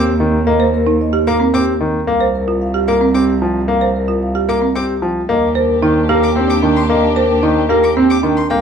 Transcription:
Already playing: cello D#2, grand piano C4, vibraphone G4
0.20 grand piano D#3
0.47 grand piano A#3, vibraphone D#5
0.60 marimba C5
0.74 vibraphone A#4
0.87 marimba D#4
1.01 vibraphone D#5
1.13 marimba G4
1.27 grand piano A#3, vibraphone A#4, violin D6
1.40 marimba C4
1.54 grand piano C4, vibraphone G4, violin D6
1.80 grand piano D#3
2.07 cello C2, grand piano A#3, vibraphone F5
2.21 marimba C5
2.35 vibraphone A#4
2.48 marimba F4
2.61 vibraphone F5
2.74 marimba G4
2.88 grand piano A#3, vibraphone A#4, violin D6
3.01 marimba C4
3.14 grand piano C4, vibraphone G4, violin D6
3.42 grand piano F3, vibraphone G5
3.68 grand piano A#3, vibraphone F5
3.81 marimba C5
3.96 vibraphone A#4
4.08 marimba F4
4.23 vibraphone F5
4.35 marimba G4
4.49 grand piano A#3, vibraphone A#4, violin D6
4.62 marimba C4
4.76 grand piano C4, vibraphone G4, violin D6
5.02 grand piano F3, vibraphone G5
5.29 cello D#2, grand piano A#3, string section D4 G4, vibraphone D#5
5.55 vibraphone A#4, marimba C5
5.82 grand piano D#3, marimba D#4, vibraphone D#5
6.09 grand piano A#3, marimba G4, vibraphone A#4
6.23 violin D6
6.36 marimba C4, grand piano C4, vibraphone G4
6.50 violin D6
6.62 grand piano D#3, marimba D4, vibraphone G5
6.76 violin C6
6.90 grand piano A#3, vibraphone D#5
7.16 vibraphone A#4, marimba C5
7.43 grand piano D#3, marimba D#4
7.69 grand piano A#3, marimba G4, vibraphone A#4
7.84 violin D6
7.97 grand piano C4, marimba C4, vibraphone G4
8.10 violin D6
8.23 grand piano D#3, marimba D4, vibraphone G5
8.37 violin C6
8.50 cello C2, grand piano A#3, string section C4 F4, vibraphone F5, violin G5

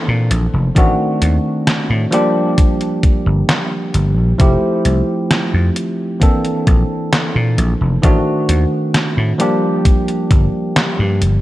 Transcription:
Already playing: tine electric piano E3 A#3 C4 D4 A4
0.08 slap bass A#2
0.31 slap bass A#1, closed hi-hat
0.54 slap bass F1
0.75 slap bass A1, tine electric piano D#3 A3 C4 D4 F#4, kick, closed hi-hat
1.22 slap bass D#2, closed hi-hat
1.67 snare, closed hi-hat
1.90 slap bass A2
2.11 tine electric piano F3 G3 A#3 D4 G4, closed hi-hat
2.58 kick, closed hi-hat
2.81 closed hi-hat
3.03 kick, closed hi-hat
3.26 slap bass G1
3.49 snare, closed hi-hat
3.94 slap bass G1, closed hi-hat
4.17 slap bass A#1
4.38 slap bass F1, tine electric piano F3 A3 C4 E4 G4, kick, closed hi-hat
4.85 slap bass C2, closed hi-hat
5.31 snare, closed hi-hat
5.54 slap bass F2
5.76 closed hi-hat
6.20 tine electric piano E3 A#3 C4 D4 A4, kick, closed hi-hat
6.45 closed hi-hat
6.67 slap bass A#1, kick, closed hi-hat
7.13 snare, closed hi-hat
7.35 slap bass A#2
7.58 slap bass A#1, closed hi-hat
7.81 slap bass F1
8.02 slap bass A1, tine electric piano D#3 A3 C4 D4 F#4, kick, closed hi-hat
8.49 slap bass D#2, closed hi-hat
8.94 snare, closed hi-hat
9.17 slap bass A2
9.38 tine electric piano F3 G3 A#3 D4 G4, closed hi-hat
9.85 kick, closed hi-hat
10.08 closed hi-hat
10.31 slap bass G1, kick, closed hi-hat
10.76 snare, closed hi-hat
10.99 slap bass G2
11.22 slap bass G1, closed hi-hat

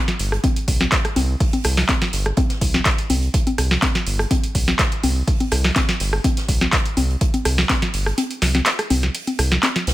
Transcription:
0.08 snare, closed hi-hat
0.19 analog synth bass G1, closed hi-hat, open hi-hat
0.32 cross-stick, closed hi-hat
0.43 kick, closed hi-hat, high conga
0.56 closed hi-hat
0.68 analog synth bass C2, kick, closed hi-hat, open hi-hat
0.80 snare, closed hi-hat, high conga
0.92 kick, snare, clap, closed hi-hat
1.05 cross-stick, closed hi-hat
1.16 analog synth bass C2, closed hi-hat, open hi-hat, high conga
1.40 kick, closed hi-hat, open hi-hat
1.53 closed hi-hat, high conga
1.64 analog synth bass C2, cross-stick, closed hi-hat, open hi-hat
1.77 snare
1.88 kick, snare, clap, closed hi-hat, high conga
2.01 snare, closed hi-hat
2.13 analog synth bass G1, snare, closed hi-hat, open hi-hat
2.26 cross-stick, closed hi-hat
2.37 kick, closed hi-hat, high conga
2.50 snare, closed hi-hat
2.61 analog synth bass C2, kick, closed hi-hat, open hi-hat
2.74 snare, high conga
2.85 kick, snare, clap, closed hi-hat
2.98 closed hi-hat
3.10 analog synth bass C2, closed hi-hat, open hi-hat, high conga
3.22 closed hi-hat
3.34 kick, closed hi-hat
3.47 closed hi-hat, high conga
3.58 analog synth bass C2, cross-stick, closed hi-hat, open hi-hat
3.71 snare
3.82 kick, snare, clap, closed hi-hat, high conga
3.95 snare, closed hi-hat
4.06 analog synth bass G1, closed hi-hat, open hi-hat
4.19 cross-stick, closed hi-hat
4.31 kick, closed hi-hat, high conga
4.43 closed hi-hat
4.55 analog synth bass C2, kick, closed hi-hat, open hi-hat
4.68 snare, closed hi-hat, high conga
4.79 kick, snare, clap, closed hi-hat
4.92 closed hi-hat
5.03 analog synth bass C2, closed hi-hat, open hi-hat, high conga
5.27 kick, closed hi-hat, open hi-hat
5.40 closed hi-hat, high conga
5.51 analog synth bass C2, cross-stick, closed hi-hat, open hi-hat
5.64 snare
5.76 kick, snare, clap, closed hi-hat, high conga
5.88 snare, closed hi-hat
6.00 analog synth bass G1, snare, closed hi-hat, open hi-hat
6.13 cross-stick
6.24 kick, closed hi-hat, high conga
6.37 snare, closed hi-hat
6.48 analog synth bass C2, kick, closed hi-hat, open hi-hat
6.61 snare, closed hi-hat, high conga
6.73 kick, snare, clap, closed hi-hat
6.86 closed hi-hat
6.97 analog synth bass C2, closed hi-hat, open hi-hat, high conga
7.10 closed hi-hat
7.21 kick, closed hi-hat
7.34 closed hi-hat, high conga
7.45 analog synth bass C2, cross-stick, closed hi-hat, open hi-hat
7.58 snare
7.69 kick, snare, clap, closed hi-hat, high conga
7.82 snare, closed hi-hat
7.94 analog synth bass G1, closed hi-hat, open hi-hat
8.06 cross-stick, closed hi-hat
8.18 closed hi-hat, high conga
8.31 closed hi-hat
8.42 analog synth bass C2, snare, closed hi-hat, open hi-hat
8.55 snare, closed hi-hat, high conga
8.66 snare, clap, closed hi-hat
8.79 cross-stick, closed hi-hat
8.90 analog synth bass C2, closed hi-hat, open hi-hat, high conga
9.03 snare, closed hi-hat
9.14 closed hi-hat, open hi-hat
9.27 closed hi-hat, high conga
9.39 analog synth bass C2, cross-stick, closed hi-hat, open hi-hat
9.52 snare, closed hi-hat
9.63 snare, clap, closed hi-hat, high conga
9.76 snare, closed hi-hat
9.87 analog synth bass C2, snare, closed hi-hat, open hi-hat

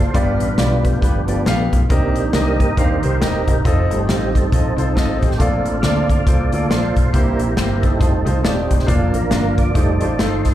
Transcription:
Already playing: fingered electric bass F#1, tonewheel organ F4 A4 C5
0.14 fingered electric bass G1, grand piano G2 B3 F4 G4 D5, tonewheel organ D4 F4 B4, kick, closed hi-hat
0.40 fingered electric bass A1, closed hi-hat
0.57 fingered electric bass B1, grand piano B3 F4 G4 D5, snare, closed hi-hat
0.84 tonewheel organ F3 A3 B3 D4 G4, kick, closed hi-hat
1.02 fingered electric bass G1, grand piano B3 F4 G4 B4, kick, closed hi-hat
1.27 grand piano B3 F4 G4 D5, closed hi-hat
1.45 fingered electric bass A#1, grand piano B3 F4 G4 F5, snare, closed hi-hat
1.72 fingered electric bass B1, tonewheel organ F4, kick, closed hi-hat
1.89 fingered electric bass C2, grand piano C3 C4 G4 A#4 D#5, tonewheel organ D#3 A#3 D4 D#4 G4, kick, closed hi-hat
2.16 fingered electric bass A#1, closed hi-hat
2.33 fingered electric bass C2, grand piano C4 G4 A#4 D#5, tonewheel organ G4 A#4 D#5, snare, closed hi-hat
2.60 kick, closed hi-hat
2.77 fingered electric bass D#2, tonewheel organ D#3 A#3 D4 D#4 G4 C5, grand piano C4 G4 A#4 F5, kick, closed hi-hat
3.03 fingered electric bass C2, grand piano C4 G4 A#4 C5, closed hi-hat
3.21 fingered electric bass D#1, grand piano C4 G4 A#4 D#5, tonewheel organ D#4 G4 A#4, snare, closed hi-hat
3.47 fingered electric bass E1, kick, closed hi-hat
3.65 fingered electric bass F1, grand piano C4 F4 A4 D#5, tonewheel organ C4 D#4 A4, kick, closed hi-hat
3.90 fingered electric bass G1, tonewheel organ G3 A3 D#4, closed hi-hat
4.00 tonewheel organ C4 D#4 G4
4.07 fingered electric bass A1, grand piano C4 F4 A4 D#5, snare, closed hi-hat
4.35 tonewheel organ C4 D#4 A4, kick, closed hi-hat
4.52 fingered electric bass A#1, grand piano C4 F4 A4 D#5, kick, closed hi-hat
4.76 fingered electric bass C2, grand piano C4 F4 A4 C5, closed hi-hat
4.95 fingered electric bass G#1, grand piano C4 F4 A4 D#5, kick, snare, closed hi-hat
5.21 fingered electric bass A1, tonewheel organ G4, kick, closed hi-hat
5.31 snare
5.37 fingered electric bass A#1, tonewheel organ A3 C4 D4 F4 A4, grand piano A#3 F4 A4, kick, closed hi-hat
5.41 grand piano A#2 D5
5.65 fingered electric bass A1, closed hi-hat
5.82 fingered electric bass D2, grand piano A#3 F4 A4 D5, tonewheel organ A4 D5 F5, snare, closed hi-hat
6.10 tonewheel organ A3 C4 D4, kick, closed hi-hat
6.26 fingered electric bass C2, grand piano A#3 F4 A4 C5, tonewheel organ F4 A4 D5, kick, closed hi-hat
6.52 fingered electric bass D2, grand piano A#3 F4 A4 D5, closed hi-hat
6.69 fingered electric bass A#1, grand piano A#3 F4 A4 D5, tonewheel organ F4 A4 C5, snare, closed hi-hat
6.96 fingered electric bass B1, kick, closed hi-hat
7.13 fingered electric bass C2, grand piano C3 A#3 E4 G4 C5, tonewheel organ E3 A#3 D4 E4 G4 A#4, kick, closed hi-hat
7.39 fingered electric bass A#1, closed hi-hat
7.49 tonewheel organ E4 G4 A#4
7.56 fingered electric bass G1, grand piano A#3 E4 G4 C5, snare, closed hi-hat
7.83 tonewheel organ C4 D#4 A4, kick, closed hi-hat
7.99 fingered electric bass F1, tonewheel organ G3 A3 D#4, grand piano A3 D#4 F4 C5, kick, closed hi-hat
8.25 fingered electric bass C2, grand piano A3 D#4 F4 C5, closed hi-hat
8.43 fingered electric bass D#1, grand piano A3 D#4 F4 D5, tonewheel organ C4 D#4 G4, snare, closed hi-hat
8.71 fingered electric bass E1, kick, closed hi-hat
8.79 snare
8.86 fingered electric bass F1, tonewheel organ F3 A#3 D4 F4 A4, grand piano A#3 D4 F4 D5, kick, closed hi-hat
9.14 fingered electric bass A1, tonewheel organ D4 F4 A#4, closed hi-hat
9.30 fingered electric bass G1, grand piano A#3 D4 F4 D5, snare, closed hi-hat
9.58 tonewheel organ D5, kick, closed hi-hat
9.74 fingered electric bass F1, tonewheel organ G3 A3 D#4 A4 D5, grand piano A3 D#4 F4 C5, kick, closed hi-hat
10.00 fingered electric bass A1, grand piano A3 D#4 F4 C5, closed hi-hat
10.18 fingered electric bass G1, grand piano A3 D#4 F4 A4, tonewheel organ D#4 A4 C5, snare, closed hi-hat
10.45 kick, snare, closed hi-hat

